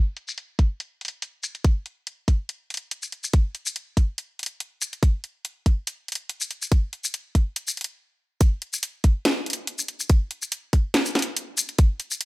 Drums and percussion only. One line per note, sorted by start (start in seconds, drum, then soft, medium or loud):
0.17 closed hi-hat soft
0.28 shaker medium
0.38 closed hi-hat medium
0.59 kick medium
0.59 closed hi-hat soft
0.80 closed hi-hat medium
1.01 closed hi-hat soft
1.05 closed hi-hat medium
1.08 closed hi-hat medium
1.22 closed hi-hat medium
1.43 closed hi-hat soft
1.43 shaker medium
1.55 closed hi-hat soft
1.65 kick loud
1.65 closed hi-hat medium
1.86 closed hi-hat soft
2.07 closed hi-hat medium
2.28 kick medium
2.28 closed hi-hat soft
2.49 closed hi-hat medium
2.70 closed hi-hat soft
2.74 closed hi-hat medium
2.77 closed hi-hat medium
2.91 closed hi-hat medium
3.03 shaker soft
3.12 closed hi-hat soft
3.24 shaker medium
3.33 kick loud
3.33 closed hi-hat medium
3.55 closed hi-hat soft
3.66 shaker medium
3.76 closed hi-hat medium
3.97 kick medium
3.97 closed hi-hat soft
4.18 closed hi-hat medium
4.39 closed hi-hat soft
4.43 closed hi-hat medium
4.46 closed hi-hat medium
4.60 closed hi-hat medium
4.82 closed hi-hat soft
4.82 shaker medium
4.93 closed hi-hat soft
5.03 kick loud
5.03 closed hi-hat medium
5.24 closed hi-hat soft
5.45 closed hi-hat medium
5.66 kick medium
5.66 closed hi-hat soft
5.87 closed hi-hat medium
6.08 closed hi-hat soft
6.12 closed hi-hat medium
6.15 closed hi-hat medium
6.29 closed hi-hat medium
6.41 shaker soft
6.51 closed hi-hat soft
6.62 shaker medium
6.72 kick loud
6.72 closed hi-hat medium
6.93 closed hi-hat soft
7.04 shaker medium
7.14 closed hi-hat medium
7.35 kick medium
7.35 closed hi-hat soft
7.56 closed hi-hat medium
7.68 shaker medium
7.77 closed hi-hat soft
7.81 closed hi-hat medium
7.84 closed hi-hat medium
8.41 kick loud
8.41 closed hi-hat medium
8.62 closed hi-hat medium
8.73 shaker medium
8.83 closed hi-hat medium
9.04 kick medium
9.04 closed hi-hat medium
9.25 snare loud
9.25 closed hi-hat medium
9.46 closed hi-hat medium
9.50 closed hi-hat medium
9.53 closed hi-hat medium
9.67 closed hi-hat medium
9.79 shaker medium
9.88 closed hi-hat medium
10.00 shaker medium
10.10 kick loud
10.10 closed hi-hat medium
10.31 closed hi-hat medium
10.42 shaker medium
10.52 closed hi-hat medium
10.73 kick medium
10.73 closed hi-hat medium
10.94 snare loud
10.94 closed hi-hat medium
11.06 shaker medium
11.15 snare medium
11.15 closed hi-hat medium
11.19 closed hi-hat medium
11.22 closed hi-hat medium
11.37 closed hi-hat medium
11.58 closed hi-hat medium
11.58 shaker medium
11.69 closed hi-hat soft
11.79 kick loud
11.79 closed hi-hat medium
12.00 closed hi-hat medium
12.11 shaker medium
12.21 closed hi-hat medium